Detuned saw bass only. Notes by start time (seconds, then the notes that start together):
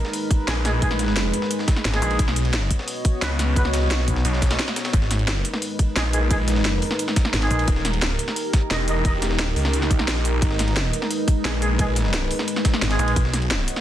0.48 A#1
2.02 A#1
2.19 B1
3.22 C#2
3.82 C2
4.25 B1
4.93 G#1
5.96 A#1
7.51 A#1
7.68 D#1
8.71 E1
9.30 D#1
9.56 C#2
10.08 A#1
10.42 G#1
11.45 A#1
12.99 A#1
13.16 B1